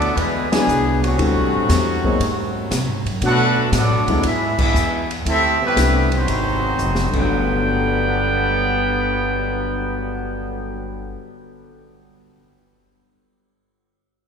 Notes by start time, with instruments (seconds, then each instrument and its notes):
Already playing: upright bass D2, trombone section F#3 A3 D4, trumpet section B3 F#4 A4 D5
0.02 ride
0.16 upright bass E2, trombone section D3 G#3 B3, trumpet section G#3 D4 E4 B4, kick, ride
0.49 trombone section B2 D3 G#3, grand piano F#3 B3 D4 E4 G#4, trumpet section B3 D4 G#4, snare, ride
0.67 upright bass C2, hi-hat pedal
1.00 trombone section A2 C3 F#3, trumpet section A3 C4 F#4
1.04 ride
1.17 upright bass D2, grand piano G3 C4 D4 E4 A4, kick, ride
1.35 upright bass C2
1.53 upright bass A1
1.69 upright bass E2, kick, snare, hi-hat pedal, ride
2.04 grand piano F#3 A#3 C4 D#4 G#4, kick
2.20 upright bass G#2, kick, ride
2.71 upright bass C3, kick, snare, hi-hat pedal, ride
2.87 upright bass G#2
3.05 upright bass F#2, ride
3.21 upright bass B2, grand piano F#3 A3 B3 D4 F#4, trombone section A3 D4 F#4, trumpet section D4 A4 B4 F#5, kick, ride
3.72 upright bass A2, trombone section F#3 A3 D4, trumpet section F#4 A4, kick, snare, hi-hat pedal, ride
3.76 trumpet section B3 D5
3.90 upright bass F#2
4.07 upright bass D2, grand piano F#3 G#3 B3 D4 E4, kick, ride
4.23 upright bass G#2, trombone section G#3 B3 E4, trumpet section D4 G#4 B4 E5, kick, ride
4.58 trombone section G#3 B3 E4, trumpet section E5, kick, crash
4.62 trumpet section D4 G#4 B4
4.74 upright bass E2, hi-hat pedal
5.11 ride
5.25 upright bass D2, trombone section A3 C4 E4, trumpet section A4, kick, ride
5.29 trumpet section C4 G4 E5
5.60 trombone section C3 G3 B3
5.65 trumpet section A3 E4 G4 B4
5.76 upright bass C2, grand piano G3 A3 C4 D4 E4, kick, snare, hi-hat pedal, ride
6.11 trombone section D#3 F#3 C4, ride
6.16 trumpet section G#3 D#4 F#4 C5
6.27 upright bass G#1, kick, ride
6.78 upright bass F1, hi-hat pedal
6.95 snare
7.08 grand piano G2 D3
7.13 upright bass G1, trombone section G2 D3 F#3 B3, grand piano A3, trumpet section D4 B4 F#5 G5, kick, crash
7.17 grand piano F#3 B3
7.80 grand piano A4
7.88 grand piano D5
7.96 grand piano F#5
8.05 grand piano A5
8.15 grand piano D6